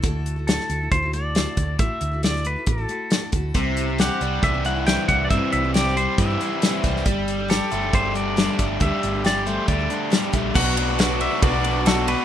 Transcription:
<<
  \new Staff \with { instrumentName = "String section" } { \time 4/4 \key d \mixolydian \tempo 4 = 137 r1 | r1 | r1 | r1 |
r1 | r1 | <b' d'' fis'' d'''>1 | }
  \new Staff \with { instrumentName = "Pedal steel guitar" } { \time 4/4 \key d \mixolydian r4 a'4 c''8 d''4. | e''4 d''8 b'8 a'4. r8 | r4 fis''4 e''8 fis''8 g''8 fis''16. d''32 | e''8 e''8 d''8 c''8 e''4. r8 |
r4 a'4 c''8 d''4. | e''4 d''8 c''8 d''4. r8 | fis''4. e''8 d''4 a'8 b'8 | }
  \new Staff \with { instrumentName = "Steel-string acoustic guitar" } { \time 4/4 \key d \mixolydian <d a e' fis' a'>8. <e' fis' a'>16 <d a e' fis' a'>8 <a e' fis' a'>16 <e' fis' a'>8 <e' fis' a'>16 <a e' fis' a'>8 <d a e' fis' a'>8 <a e' fis' a'>8 | <d a e' fis' a'>8. <e' fis' a'>16 <d a e' fis' a'>8 <a e' fis' a'>16 <e' fis' a'>8 <e' fis' a'>16 <a e' fis' a'>8 <d a e' fis' a'>8 <a e' fis' a'>8 | <c e g c' e' c''>8. <g c' e' c''>16 <c e g c' e' c''>8 <g c' e' c''>8. <g c' e' c''>16 <g c' e' c''>16 <g c' e' c''>16 <c e g c' e' c''>8 <g c' c''>8 | <c e g c' e' c''>8. <g c' e' c''>16 <c e g c' e' c''>8 <g c' e' c''>8. <g c' e' c''>16 <g c' c''>16 <g c' e' c''>16 <c e g c' e' c''>8 <g c' e' c''>8 |
<g d' g' a'>8. <d' g' a'>16 <g d' g' a'>8 <g d' g' a'>16 <d' g' a'>8 <d' g' a'>16 <g d' g' a'>8 <g d' g' a'>8 <g d' g' a'>8 | <g d' g' a'>8. <d' g' a'>16 <g d' g' a'>8 <g d' g' a'>8. <d' g' a'>16 <g d' a'>8 <g d' g' a'>8 <g d' g' a'>8 | <b, fis b d' fis' b'>8 <b d' b'>16 <b d' fis' b'>16 <b, fis b d' fis' b'>16 <b d' fis' b'>8 <b d' fis' b'>8 <b d' fis' b'>16 <b d' fis' b'>16 <b d' fis' b'>16 <b, fis b d' fis' b'>8 <b d' b'>8 | }
  \new Staff \with { instrumentName = "Overdriven electric guitar" } { \time 4/4 \key d \mixolydian r1 | r1 | c4 g'8 g8 e8 e'8 e8 g8 | c4 g'8 g8 e8 e'8 e8 g8 |
g4 g'8 a8 g8 d'8 g8 a8 | g4 g'8 a8 g8 d'8 g8 a8 | <b, fis b d' fis'>8 <b d' fis'>8 <fis b d' fis'>8 <b d' fis'>8 <b, fis b d' fis'>4 <fis b d' fis'>8 <b d' fis'>8 | }
  \new Staff \with { instrumentName = "Fingered electric bass" } { \clef bass \time 4/4 \key d \mixolydian d,4. d,8 d,4. d,8 | a,,16 r16 d,4. a,,8 r4 d,8 | c,4. c,8 c,4. c,8 | g,16 r16 c,4. g,8 r4 c,8 |
g,,4. g,,8 g,,4. g,,8 | d,16 r16 g,,4. d,8 r4 bes,,8 | b,,2 b,,2 | }
  \new DrumStaff \with { instrumentName = "Drums" } \drummode { \time 4/4 <hh bd>8 hh8 <hh sn>16 sn16 hh8 <hh bd>8 hh8 <hh sn>8 <hh bd>8 | <hh bd>8 hh8 <hh sn>16 sn16 hh8 <hh bd>8 hh8 <hh sn>8 <hh bd>8 | <hh bd>8 hh8 <hh sn>8 hh8 <hh bd>8 hh8 <hh sn>8 <hh bd>8 | <hh bd>8 hh8 <hh sn>16 sn16 hh8 <hh bd>8 hh8 <hh sn>8 <hh bd>16 sn16 |
<hh bd>8 hh8 <hh sn>8 hh8 <hh bd>8 hh8 <hh sn>8 <hh bd>8 | <hh bd>8 hh8 <hh sn>8 hh8 <hh bd>8 hh8 <hh sn>8 <hh bd>8 | <cymc bd>8 cymr8 <cymr sn>8 cymr8 <bd cymr>8 cymr8 <cymr sn>8 cymr8 | }
>>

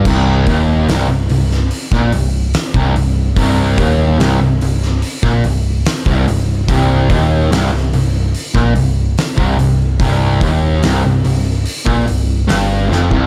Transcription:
<<
  \new Staff \with { instrumentName = "Distorted electric guitar" } { \clef bass \time 4/4 \key c \minor \tempo 4 = 72 c,8 ees,8 c,16 c,16 c,8 r16 bes,16 c,8 r16 c,16 c,8 | c,8 ees,8 c,16 c,16 c,8 r16 bes,16 c,8 r16 c,16 c,8 | c,8 ees,8 c,16 c,16 c,8 r16 bes,16 c,8 r16 c,16 c,8 | c,8 ees,8 c,16 c,16 c,8 r16 bes,16 c,8 g,8 f,16 c,16 | }
  \new Staff \with { instrumentName = "Picked electric bass" } { \clef bass \time 4/4 \key c \minor c,,8 ees,,8 c,,16 c,,16 c,,8 r16 bes,,16 c,,8 r16 c,,16 c,,8 | c,,8 ees,,8 c,,16 c,,16 c,,8 r16 bes,,16 c,,8 r16 c,,16 c,,8 | c,,8 ees,,8 c,,16 c,,16 c,,8 r16 bes,,16 c,,8 r16 c,,16 c,,8 | c,,8 ees,,8 c,,16 c,,16 c,,8 r16 bes,,16 c,,8 g,,8 f,,16 c,,16 | }
  \new DrumStaff \with { instrumentName = "Drums" } \drummode { \time 4/4 <cymc bd>8 <hho bd>8 <hho sn>8 hho16 sn16 hho16 <bd sn>16 hho8 <hho sn>16 bd16 hho8 | <hho bd>8 <hho bd>8 <hho sn>8 hho16 sn16 hho16 <bd sn>16 hho8 <hho sn>16 bd16 hho8 | <hho bd>8 <hho bd>8 <hho sn>8 hho8 hho16 <bd sn>16 hho8 <hho sn>16 bd16 hho8 | <hho bd>8 <hho bd>8 <hho sn>8 hho8 hho16 bd16 hho8 <hho sn>8 sn16 bd16 | }
>>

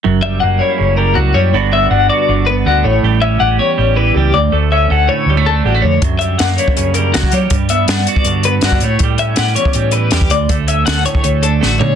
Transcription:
<<
  \new Staff \with { instrumentName = "Clean electric guitar" } { \time 4/4 \key d \major \tempo 4 = 161 r8 e''8 fis''8 cis''4 ais'8 fis'8 cis''8 | r8 e''8 fis''8 d''4 b'8 fis'8 cis''8 | r8 e''8 fis''8 cis''4 b'8 g'8 d''8 | r8 e''8 fis''8 cis''4 a'8 fis'8 cis''8 |
r8 e''8 fis''8 cis''4 ais'8 fis'8 cis''8 | r8 e''8 fis''8 d''4 b'8 fis'8 cis''8 | r8 e''8 fis''8 cis''4 b'8 g'8 d''8 | r8 e''8 fis''8 cis''4 a'8 fis'8 cis''8 | }
  \new Staff \with { instrumentName = "Clean electric guitar" } { \clef bass \time 4/4 \key d \major << { r8 g8 ais8 e'4 g4 g8 | <d b d' fis'>8 b8 d'8 fis'4 b4 r8 | g8 cis'8 g'4 g4 g8 r8 | a8 cis'8 a'4 g16 a8. g16 a16 r8 |
r8 g8 ais8 e'4 g4 g8~ | g8 b8 d'8 fis'4 b4 r8 | g8 cis'8 g'4 g4 g8 r8 | a8 cis'8 a'4 a4 a8 r8 | } \\ { fis,2 cis4 fis4 | g,2 d4 d8 a,8~ | a,4. e,4 e4 d,8~ | d,4. a,4 d4 d,8 |
fis,2 cis4 fis4 | g,2 d4 d8 a,8~ | a,4. e,4 e4 d,8~ | d,4. a,4 d4 d,8 | } >> }
  \new Staff \with { instrumentName = "Fingered electric bass" } { \clef bass \time 4/4 \key d \major fis,,4 fis,,8 r8 fis,,4 cis,8 fis,8 | g,,4 g,,8 r8 g,,4 d,8 a,,8 | a,,4 a,,8 r8 a,,4 cis,8 d,8 | d,4 d,8 r8 d,4 a,,8 f,8 |
fis,4 fis,8 r8 fis,4 cis,8 fis8 | g,4 g,8 r8 g,4 g,8 a,8 | a,4 a,8 r8 a,4 e,8 d,8 | d,4 d,8 r8 d,4 a,,8 d8 | }
  \new DrumStaff \with { instrumentName = "Drums" } \drummode { \time 4/4 r4 r4 r4 r4 | r4 r4 r4 r4 | r4 r4 r4 r4 | r4 r4 r4 r4 |
<hh bd>8 hh8 <hh sn>8 hh16 bd16 hh8 hh8 <hh sn>16 bd16 hh8 | <hh bd>8 hh8 <hh sn>16 sn16 hh16 bd16 hh8 hh8 <hh sn>16 bd16 hh8 | <hh bd>8 hh8 <hh sn>8 hh16 bd16 hh8 hh8 <hh sn>16 bd16 hh8 | <hh bd>8 hh8 <hh sn>8 hh16 bd16 hh8 hh8 sn8 tomfh8 | }
>>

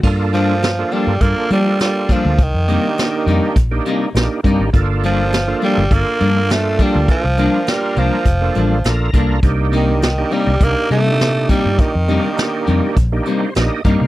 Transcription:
<<
  \new Staff \with { instrumentName = "Tonewheel organ" } { \time 4/4 \key g \minor \tempo 4 = 102 << { r1 | r1 | r1 | r2. bes''4 |
r1 | r2 r8 c''8 ees''8 f''8 | } \\ { <bes d' f' a'>4 r16 <bes d' f' a'>8. <bes d' f' a'>8. <bes d' f' a'>4~ <bes d' f' a'>16 | r8 <bes d' ees' g'>4. r16 <bes d' ees' g'>8. <bes d' ees' g'>8 <bes d' ees' g'>8 | <bes d' f' a'>4 r16 <bes d' f' a'>8. <bes d' f' a'>8. <bes d' f' a'>4~ <bes d' f' a'>16~ | <bes d' f' a'>16 r16 <bes d' f' bes'>4. r16 <bes d' f' a'>8. <bes d' f' a'>8 <bes d' f' a'>8 |
<bes d' ees' g'>4 r16 <bes d' ees' g'>8. <bes d' ees' g'>8. <bes, d' ees' g'>4~ <bes, d' ees' g'>16~ | <bes, d' ees' g'>16 r16 <bes d' ees' g'>4. r16 <bes d' ees' g'>8. <bes d' ees' g'>8 <bes d' ees' g'>8 | } >> }
  \new Staff \with { instrumentName = "Clean electric guitar" } { \clef bass \time 4/4 \key g \minor r8 <g, f bes d'>8 r8 <g, f bes d'>8 r8 <g, f bes d'>8 r8 <g, f bes d'>8 | r8 <c g bes ees'>8 r8 <c g bes ees'>8 r8 <c g bes ees'>8 r8 <c g bes ees'>8 | r8 <g, f bes d'>8 r8 <g, f bes d'>8 r8 <g, f bes d'>8 r8 <g, f bes d'>8 | r8 <g, f bes d'>8 r8 <g, f bes d'>8 r8 <g, f bes d'>8 r8 <g, f bes d'>8 |
r8 <c g bes ees'>8 r8 <c g bes ees'>8 r8 <c g bes ees'>8 r8 <c g bes ees'>8 | r8 <c g bes ees'>8 r8 <c g bes ees'>8 r8 <c g bes ees'>8 r8 <c g bes ees'>8 | }
  \new Staff \with { instrumentName = "Tenor saxophone" } { \clef bass \time 4/4 \key g \minor r8 f4 g8 bes8 g8 g8 f8 | ees2 r2 | r8 f4 g8 bes4 a8 g8 | f4 g8 f4. r4 |
r8 ees8 ees8 g8 bes8 a4 g8 | ees2 r2 | }
  \new Staff \with { instrumentName = "Fingered electric bass" } { \clef bass \time 4/4 \key g \minor g,4.~ g,16 g,16 g,16 r16 g4~ g16 d,16 | c,16 f,8 r8. f,16 r16 bes,,8 r8 bes,,16 r16 g,16 aes,,16 | g,,4.~ g,,16 g,,16 g,,16 r16 g,4~ g,16 d,16 | r16 c,8 r8. c,16 r16 f,,8 a,,8 bes,,8 c,8 |
c,4.~ c,16 c,16 c,16 r16 c4~ c16 g,16 | r16 f,8 r8. f,16 r16 bes,,8 r8 bes,,16 r16 g,16 c16 | }
  \new DrumStaff \with { instrumentName = "Drums" } \drummode { \time 4/4 <cymc bd>8 hh8 <hh sn>8 hh8 <hh bd>8 hh8 <hh sn>8 <hh bd>8 | <hh bd>8 hh8 <hh sn>8 hh8 <hh bd>8 hh8 <hh sn>8 <hh bd>8 | <hh bd>8 hh8 <hh sn>8 hh8 <hh bd>8 hh8 <hh sn>8 <hh bd>8 | <hh bd>8 hh8 <hh sn>8 hh8 <hh bd>8 hh8 <hh sn>8 <hh bd>8 |
<hh bd>8 hh8 <hh sn>8 hh8 <hh bd>8 hh8 <hh sn>8 <hh bd>8 | <hh bd>8 hh8 <hh sn>8 hh8 <hh bd>8 hh8 <hh sn>8 <hh bd>8 | }
>>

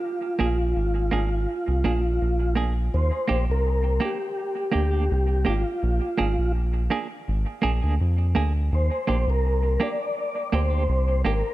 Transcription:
<<
  \new Staff \with { instrumentName = "Tonewheel organ" } { \time 4/4 \key ees \major \tempo 4 = 83 f'2.~ f'8 r8 | c''8. bes'8. g'4. g'8 f'8~ | f'4 r2. | c''8. bes'8. d''4 c''4 bes'8 | }
  \new Staff \with { instrumentName = "Clean electric guitar" } { \time 4/4 \key ees \major r8 <bes d' aes'>16 r8. <bes d' aes'>16 r8. <bes d' aes'>16 r8. <bes d' aes'>16 r16 | r8 <bes d' g'>16 r8. <bes d' g'>16 r8. <bes d' g'>16 <bes d' g'>16 r8 <bes d' g'>16 r16 | r8 <bes d' aes'>16 r8. <bes d' aes'>16 r8. <bes d' aes'>16 <bes d' aes'>16 r8 <bes d' aes'>16 r16 | r8 <bes d' g'>16 r8. <bes d' g'>16 r8. <bes d' g'>16 <bes d' g'>16 r8 <bes d' g'>16 r16 | }
  \new Staff \with { instrumentName = "Analog synth bass" } { \clef bass \time 4/4 \key ees \major r8 bes,,8 aes,,8 aes,,8 r16 c,16 bes,,8 bes,,4 | ees,16 r16 bes,,16 c,8. r4 d,8 c,8 aes,,16 r16 | bes,,16 r16 aes,,16 bes,,8. r8 aes,,16 r16 bes,,16 d,16 f,8 d,8 | ees,16 r16 bes,,16 c,8. r4 d,8 c,8 aes,,16 r16 | }
>>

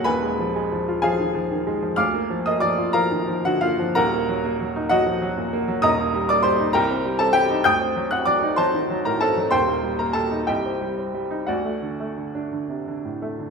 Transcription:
<<
  \new Staff \with { instrumentName = "Grand piano" } { \time 6/8 \key ees \minor \tempo 4. = 63 <ces'' aes'' ces'''>4. <aes' f'' aes''>4. | <f'' d''' f'''>8. <ees'' ees'''>16 <d'' d'''>8 <bes' f'' bes''>8. <ges' ges''>16 <f' f''>8 | <bes' ges'' bes''>4. <ges' ees'' ges''>4. | \key d \phrygian <ees'' bes'' ees'''>8. <d'' d'''>16 <c'' c'''>8 <bes' g'' bes''>8. <a' a''>16 <g' g''>8 |
<g'' ees''' g'''>8. <fis'' fis'''>16 <d'' d'''>8 <c'' a'' c'''>8. <bes' bes''>16 <a' a''>8 | <c'' g'' c'''>8. <bes' bes''>16 <a' a''>8 <g' ees'' g''>4. | <fis' d'' fis''>4. r4. | }
  \new Staff \with { instrumentName = "Grand piano" } { \clef bass \time 6/8 \key ees \minor <ees,, ees,>16 aes16 f16 aes16 f16 f'16 f16 ees16 f16 ees16 aes16 f16 | d,16 bes16 f16 bes16 f16 f'16 f16 ees16 f16 d16 bes16 f16 | <ees,, ees,>16 bes16 ges16 bes16 ges16 ees'16 ges16 f16 ges16 bes,16 bes16 ges16 | \key d \phrygian <ees,, ees,>16 bes16 g16 bes16 g16 ees'16 c,16 c'16 g16 c'16 g16 ees'16 |
d,16 c'16 fis16 c'16 fis16 ees'16 fis16 ees16 fis16 a,16 c'16 fis16 | <ees,, ees,>16 bes16 g16 bes16 g16 ees'16 c,16 c'16 g16 c'16 g16 ees'16 | d,16 a16 d16 a16 d16 d'16 d16 c16 d16 a,16 a16 d16 | }
>>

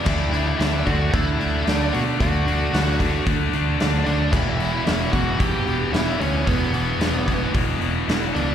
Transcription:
<<
  \new Staff \with { instrumentName = "Lead electric guitar" } { \time 4/4 \key d \major \tempo 4 = 112 <e' e''>4 <e' e''>8 <fis' fis''>8 <e' e''>4 <d' d''>8 <fis' fis''>8 | <fis' fis''>2 r4. <d' d''>8 | <e' e''>4 <e' e''>8 <fis' fis''>8 <g' g''>4 <e' e''>8 <cis' cis''>8 | <b b'>2 r4. <d' d''>8 | }
  \new Staff \with { instrumentName = "Distorted electric guitar" } { \clef bass \time 4/4 \key d \major <d a d'>8 <d a d'>8 <d a d'>8 <d a d'>8 <d a d'>8 <d a d'>8 <d a d'>8 <d a d'>8 | <d a d'>8 <d a d'>8 <d a d'>8 <d a d'>8 <d a d'>8 <d a d'>8 <d a d'>8 <d a d'>8 | <e, b, e>8 <e, b, e>8 <e, b, e>8 <e, b, e>8 <e, b, e>8 <e, b, e>8 <e, b, e>8 <e, b, e>8 | <e, b, e>8 <e, b, e>8 <e, b, e>8 <e, b, e>8 <e, b, e>8 <e, b, e>8 <e, b, e>8 <e, b, e>8 | }
  \new Staff \with { instrumentName = "Distorted electric guitar" } { \clef bass \time 4/4 \key d \major <d a d'>8 <d a d'>8 <d a d'>8 <d a d'>8 <d a d'>8 <d a d'>8 <d a d'>8 <d a d'>8 | <d a d'>8 <d a d'>8 <d a d'>8 <d a d'>8 <d a d'>8 <d a d'>8 <d a d'>8 <d a d'>8 | <e, b, e>8 <e, b, e>8 <e, b, e>8 <e, b, e>8 <e, b, e>8 <e, b, e>8 <e, b, e>8 <e, b, e>8 | <e, b, e>8 <e, b, e>8 <e, b, e>8 <e, b, e>8 <e, b, e>8 <e, b, e>8 <e, b, e>8 <e, b, e>8 | }
  \new Staff \with { instrumentName = "Fingered electric bass" } { \clef bass \time 4/4 \key d \major d,4 d,8 d,8 d,8 d,8 d,8 b,8 | d,4 d,4 d,8 d,8 d,8 d,8 | e,,4 e,,8 e,,8 e,,8 e,,8 e,,8 d,8 | e,,4 e,,4 e,,8 e,,8 e,,8 cis,8 | }
  \new DrumStaff \with { instrumentName = "Drums" } \drummode { \time 4/4 <cymc bd>8 hho8 <hho sn>8 <hho bd>8 <hho bd>8 hho8 <hho sn>8 hho8 | <hho bd>8 hho8 <hho sn>8 <hho bd>8 <hho bd>8 hho8 <hho sn>8 hho8 | <cymc bd>8 hho8 <hho sn>8 <hho bd>8 <hho bd>8 hho8 <hho sn>8 hho8 | <hho bd>8 hho8 <hho sn>8 <hho bd>8 <hho bd>8 hho8 <hho sn>8 hho8 | }
>>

